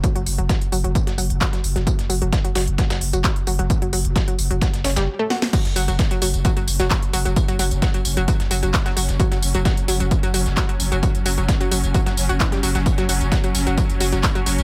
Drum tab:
CC |----------------|----------------|----------------|x---------------|
HH |xxoxxxoxxxoxxxox|xxoxxxoxxxoxxxox|xxoxxxoxxxox----|xxoxxxoxxxoxxxox|
TB |x-x-x-x-x-x-x-x-|x-x-x-x-xx-xx-x-|x-x-x-x-x-xx----|xxxxxxxxxxxxxxxx|
CP |------------x---|------------x---|----------------|------------x---|
SD |----o----o--oo-o|-o--o-o-oo--o---|----o---oooo--oo|-o--o------oo---|
BD |o---o---o---o---|o---o---o---o---|o---o---o-------|o---o---o---o---|

CC |----------------|----------------|----------------|----------------|
HH |xxoxxxoxxxoxxxox|xxoxxxoxxxoxxxox|xxoxxxoxxxoxxxox|xxoxxxoxxxoxxxox|
TB |xxxxxxxxxxxxxxxx|xxxxxxxxxxxxxxxx|xxxxxxxxxxxxxxxx|xxxxxxxxxxxxxxxx|
CP |------------x---|------------x---|------------x---|------------x---|
SD |----o----o--oo-o|-o--o------oo---|----o----o--oo-o|-o--o------oo---|
BD |o---o---o---o---|o---o---o---o---|o---o---o---o---|o---o---o---o---|